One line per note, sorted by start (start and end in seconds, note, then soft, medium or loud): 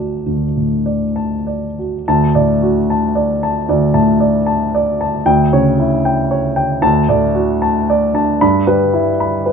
0.00 0.21 D2 soft
0.00 0.57 A2 soft
0.00 0.44 F#4 soft
0.00 0.86 D5 soft
0.00 1.16 A5 soft
0.26 2.01 D2 soft
0.57 1.04 A2 soft
0.86 1.33 D5 soft
1.16 1.64 A5 soft
1.47 1.94 D5 soft
1.79 2.06 F#4 soft
2.08 3.65 D2 soft
2.08 2.51 A5 medium
2.35 2.78 A2 soft
2.35 2.78 D5 soft
2.63 3.04 F#4 soft
2.90 3.31 A5 soft
3.15 3.57 D5 soft
3.43 3.84 A5 soft
3.69 5.23 D2 soft
3.69 4.11 D5 soft
3.94 4.36 A2 soft
3.94 4.37 A5 soft
4.20 4.63 D5 soft
4.46 4.89 A5 soft
4.75 5.16 D5 soft
5.01 5.27 A5 soft
5.26 6.79 D2 medium
5.26 5.68 G5 medium
5.53 5.95 C#3 soft
5.53 5.94 C#5 medium
5.80 6.21 E4 soft
6.05 6.47 G5 soft
6.31 6.73 C#5 soft
6.56 6.83 G5 medium
6.82 8.36 D2 medium
6.82 7.25 A5 medium
7.09 7.51 A2 soft
7.09 7.51 D5 medium
7.35 7.77 F#4 soft
7.62 8.04 A5 soft
7.90 8.31 D5 soft
8.14 8.41 D4 soft
8.14 8.41 A5 soft
8.41 9.53 G2 medium
8.41 8.82 B5 medium
8.67 9.08 G3 soft
8.67 9.08 B4 medium
8.93 9.34 E4 soft
9.20 9.53 B5 soft
9.46 9.53 B4 soft